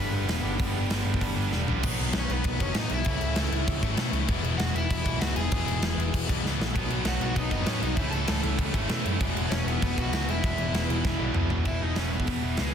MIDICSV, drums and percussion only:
0, 0, Header, 1, 2, 480
1, 0, Start_track
1, 0, Tempo, 307535
1, 922, Time_signature, 4, 2, 24, 8
1, 19886, End_track
2, 0, Start_track
2, 0, Title_t, "Drums"
2, 448, Note_on_c, 9, 46, 58
2, 457, Note_on_c, 9, 38, 111
2, 604, Note_off_c, 9, 46, 0
2, 613, Note_off_c, 9, 38, 0
2, 929, Note_on_c, 9, 46, 56
2, 931, Note_on_c, 9, 36, 108
2, 1085, Note_off_c, 9, 46, 0
2, 1087, Note_off_c, 9, 36, 0
2, 1410, Note_on_c, 9, 46, 61
2, 1419, Note_on_c, 9, 38, 103
2, 1566, Note_off_c, 9, 46, 0
2, 1575, Note_off_c, 9, 38, 0
2, 1779, Note_on_c, 9, 36, 80
2, 1893, Note_on_c, 9, 46, 61
2, 1894, Note_off_c, 9, 36, 0
2, 1894, Note_on_c, 9, 36, 96
2, 2049, Note_off_c, 9, 46, 0
2, 2051, Note_off_c, 9, 36, 0
2, 2378, Note_on_c, 9, 38, 59
2, 2534, Note_off_c, 9, 38, 0
2, 2624, Note_on_c, 9, 43, 89
2, 2781, Note_off_c, 9, 43, 0
2, 2859, Note_on_c, 9, 49, 127
2, 2859, Note_on_c, 9, 57, 75
2, 2867, Note_on_c, 9, 36, 107
2, 3015, Note_off_c, 9, 49, 0
2, 3015, Note_off_c, 9, 57, 0
2, 3023, Note_off_c, 9, 36, 0
2, 3106, Note_on_c, 9, 57, 57
2, 3262, Note_off_c, 9, 57, 0
2, 3322, Note_on_c, 9, 57, 84
2, 3332, Note_on_c, 9, 38, 121
2, 3479, Note_off_c, 9, 57, 0
2, 3488, Note_off_c, 9, 38, 0
2, 3582, Note_on_c, 9, 57, 61
2, 3738, Note_off_c, 9, 57, 0
2, 3809, Note_on_c, 9, 57, 92
2, 3823, Note_on_c, 9, 36, 113
2, 3966, Note_off_c, 9, 57, 0
2, 3980, Note_off_c, 9, 36, 0
2, 4059, Note_on_c, 9, 57, 72
2, 4064, Note_on_c, 9, 36, 93
2, 4215, Note_off_c, 9, 57, 0
2, 4220, Note_off_c, 9, 36, 0
2, 4282, Note_on_c, 9, 57, 87
2, 4292, Note_on_c, 9, 38, 112
2, 4438, Note_off_c, 9, 57, 0
2, 4448, Note_off_c, 9, 38, 0
2, 4517, Note_on_c, 9, 57, 68
2, 4673, Note_off_c, 9, 57, 0
2, 4752, Note_on_c, 9, 57, 95
2, 4777, Note_on_c, 9, 36, 112
2, 4908, Note_off_c, 9, 57, 0
2, 4933, Note_off_c, 9, 36, 0
2, 5008, Note_on_c, 9, 57, 68
2, 5164, Note_off_c, 9, 57, 0
2, 5239, Note_on_c, 9, 57, 95
2, 5248, Note_on_c, 9, 38, 107
2, 5395, Note_off_c, 9, 57, 0
2, 5405, Note_off_c, 9, 38, 0
2, 5499, Note_on_c, 9, 57, 65
2, 5655, Note_off_c, 9, 57, 0
2, 5739, Note_on_c, 9, 57, 92
2, 5740, Note_on_c, 9, 36, 127
2, 5895, Note_off_c, 9, 57, 0
2, 5896, Note_off_c, 9, 36, 0
2, 5975, Note_on_c, 9, 36, 99
2, 5977, Note_on_c, 9, 57, 67
2, 6131, Note_off_c, 9, 36, 0
2, 6133, Note_off_c, 9, 57, 0
2, 6199, Note_on_c, 9, 57, 84
2, 6209, Note_on_c, 9, 38, 115
2, 6355, Note_off_c, 9, 57, 0
2, 6365, Note_off_c, 9, 38, 0
2, 6448, Note_on_c, 9, 57, 65
2, 6604, Note_off_c, 9, 57, 0
2, 6685, Note_on_c, 9, 57, 84
2, 6692, Note_on_c, 9, 36, 122
2, 6841, Note_off_c, 9, 57, 0
2, 6848, Note_off_c, 9, 36, 0
2, 6935, Note_on_c, 9, 57, 66
2, 7091, Note_off_c, 9, 57, 0
2, 7170, Note_on_c, 9, 57, 82
2, 7180, Note_on_c, 9, 38, 112
2, 7327, Note_off_c, 9, 57, 0
2, 7336, Note_off_c, 9, 38, 0
2, 7422, Note_on_c, 9, 57, 65
2, 7578, Note_off_c, 9, 57, 0
2, 7657, Note_on_c, 9, 36, 108
2, 7667, Note_on_c, 9, 57, 95
2, 7813, Note_off_c, 9, 36, 0
2, 7823, Note_off_c, 9, 57, 0
2, 7893, Note_on_c, 9, 36, 92
2, 7895, Note_on_c, 9, 57, 68
2, 8050, Note_off_c, 9, 36, 0
2, 8051, Note_off_c, 9, 57, 0
2, 8136, Note_on_c, 9, 57, 93
2, 8145, Note_on_c, 9, 38, 101
2, 8292, Note_off_c, 9, 57, 0
2, 8301, Note_off_c, 9, 38, 0
2, 8364, Note_on_c, 9, 57, 73
2, 8521, Note_off_c, 9, 57, 0
2, 8608, Note_on_c, 9, 57, 97
2, 8618, Note_on_c, 9, 36, 123
2, 8764, Note_off_c, 9, 57, 0
2, 8774, Note_off_c, 9, 36, 0
2, 8862, Note_on_c, 9, 57, 73
2, 9018, Note_off_c, 9, 57, 0
2, 9089, Note_on_c, 9, 57, 87
2, 9098, Note_on_c, 9, 38, 119
2, 9245, Note_off_c, 9, 57, 0
2, 9254, Note_off_c, 9, 38, 0
2, 9357, Note_on_c, 9, 57, 68
2, 9513, Note_off_c, 9, 57, 0
2, 9583, Note_on_c, 9, 36, 122
2, 9587, Note_on_c, 9, 57, 103
2, 9740, Note_off_c, 9, 36, 0
2, 9743, Note_off_c, 9, 57, 0
2, 9824, Note_on_c, 9, 36, 98
2, 9833, Note_on_c, 9, 57, 81
2, 9980, Note_off_c, 9, 36, 0
2, 9989, Note_off_c, 9, 57, 0
2, 10077, Note_on_c, 9, 38, 68
2, 10234, Note_off_c, 9, 38, 0
2, 10325, Note_on_c, 9, 38, 109
2, 10481, Note_off_c, 9, 38, 0
2, 10545, Note_on_c, 9, 36, 114
2, 10550, Note_on_c, 9, 57, 95
2, 10701, Note_off_c, 9, 36, 0
2, 10706, Note_off_c, 9, 57, 0
2, 10775, Note_on_c, 9, 57, 61
2, 10931, Note_off_c, 9, 57, 0
2, 11001, Note_on_c, 9, 57, 91
2, 11010, Note_on_c, 9, 38, 114
2, 11157, Note_off_c, 9, 57, 0
2, 11166, Note_off_c, 9, 38, 0
2, 11253, Note_on_c, 9, 57, 61
2, 11409, Note_off_c, 9, 57, 0
2, 11490, Note_on_c, 9, 36, 115
2, 11492, Note_on_c, 9, 57, 85
2, 11646, Note_off_c, 9, 36, 0
2, 11648, Note_off_c, 9, 57, 0
2, 11723, Note_on_c, 9, 57, 69
2, 11724, Note_on_c, 9, 36, 87
2, 11879, Note_off_c, 9, 57, 0
2, 11880, Note_off_c, 9, 36, 0
2, 11959, Note_on_c, 9, 57, 86
2, 11968, Note_on_c, 9, 38, 109
2, 12115, Note_off_c, 9, 57, 0
2, 12124, Note_off_c, 9, 38, 0
2, 12213, Note_on_c, 9, 57, 65
2, 12369, Note_off_c, 9, 57, 0
2, 12435, Note_on_c, 9, 57, 89
2, 12440, Note_on_c, 9, 36, 104
2, 12591, Note_off_c, 9, 57, 0
2, 12596, Note_off_c, 9, 36, 0
2, 12680, Note_on_c, 9, 57, 60
2, 12836, Note_off_c, 9, 57, 0
2, 12916, Note_on_c, 9, 57, 99
2, 12926, Note_on_c, 9, 38, 123
2, 13072, Note_off_c, 9, 57, 0
2, 13082, Note_off_c, 9, 38, 0
2, 13161, Note_on_c, 9, 57, 65
2, 13317, Note_off_c, 9, 57, 0
2, 13402, Note_on_c, 9, 36, 115
2, 13403, Note_on_c, 9, 57, 98
2, 13558, Note_off_c, 9, 36, 0
2, 13559, Note_off_c, 9, 57, 0
2, 13642, Note_on_c, 9, 36, 100
2, 13649, Note_on_c, 9, 57, 75
2, 13798, Note_off_c, 9, 36, 0
2, 13805, Note_off_c, 9, 57, 0
2, 13880, Note_on_c, 9, 57, 92
2, 13889, Note_on_c, 9, 38, 112
2, 14036, Note_off_c, 9, 57, 0
2, 14045, Note_off_c, 9, 38, 0
2, 14133, Note_on_c, 9, 57, 77
2, 14289, Note_off_c, 9, 57, 0
2, 14371, Note_on_c, 9, 36, 114
2, 14371, Note_on_c, 9, 57, 92
2, 14527, Note_off_c, 9, 36, 0
2, 14527, Note_off_c, 9, 57, 0
2, 14619, Note_on_c, 9, 57, 74
2, 14775, Note_off_c, 9, 57, 0
2, 14849, Note_on_c, 9, 57, 86
2, 14859, Note_on_c, 9, 38, 117
2, 15005, Note_off_c, 9, 57, 0
2, 15015, Note_off_c, 9, 38, 0
2, 15106, Note_on_c, 9, 57, 68
2, 15262, Note_off_c, 9, 57, 0
2, 15330, Note_on_c, 9, 57, 96
2, 15333, Note_on_c, 9, 36, 120
2, 15486, Note_off_c, 9, 57, 0
2, 15490, Note_off_c, 9, 36, 0
2, 15575, Note_on_c, 9, 36, 99
2, 15586, Note_on_c, 9, 57, 69
2, 15731, Note_off_c, 9, 36, 0
2, 15743, Note_off_c, 9, 57, 0
2, 15809, Note_on_c, 9, 57, 81
2, 15818, Note_on_c, 9, 38, 121
2, 15965, Note_off_c, 9, 57, 0
2, 15974, Note_off_c, 9, 38, 0
2, 16052, Note_on_c, 9, 57, 64
2, 16209, Note_off_c, 9, 57, 0
2, 16292, Note_on_c, 9, 36, 117
2, 16300, Note_on_c, 9, 57, 86
2, 16448, Note_off_c, 9, 36, 0
2, 16456, Note_off_c, 9, 57, 0
2, 16514, Note_on_c, 9, 57, 60
2, 16670, Note_off_c, 9, 57, 0
2, 16768, Note_on_c, 9, 57, 90
2, 16778, Note_on_c, 9, 38, 119
2, 16924, Note_off_c, 9, 57, 0
2, 16934, Note_off_c, 9, 38, 0
2, 17012, Note_on_c, 9, 57, 65
2, 17168, Note_off_c, 9, 57, 0
2, 17242, Note_on_c, 9, 36, 127
2, 17251, Note_on_c, 9, 38, 74
2, 17398, Note_off_c, 9, 36, 0
2, 17407, Note_off_c, 9, 38, 0
2, 17707, Note_on_c, 9, 45, 95
2, 17863, Note_off_c, 9, 45, 0
2, 17953, Note_on_c, 9, 43, 100
2, 18109, Note_off_c, 9, 43, 0
2, 18186, Note_on_c, 9, 49, 87
2, 18194, Note_on_c, 9, 36, 94
2, 18342, Note_off_c, 9, 49, 0
2, 18350, Note_off_c, 9, 36, 0
2, 18662, Note_on_c, 9, 46, 54
2, 18672, Note_on_c, 9, 38, 96
2, 18819, Note_off_c, 9, 46, 0
2, 18828, Note_off_c, 9, 38, 0
2, 19037, Note_on_c, 9, 36, 78
2, 19152, Note_on_c, 9, 46, 53
2, 19164, Note_off_c, 9, 36, 0
2, 19164, Note_on_c, 9, 36, 89
2, 19308, Note_off_c, 9, 46, 0
2, 19320, Note_off_c, 9, 36, 0
2, 19620, Note_on_c, 9, 46, 49
2, 19629, Note_on_c, 9, 38, 97
2, 19776, Note_off_c, 9, 46, 0
2, 19785, Note_off_c, 9, 38, 0
2, 19886, End_track
0, 0, End_of_file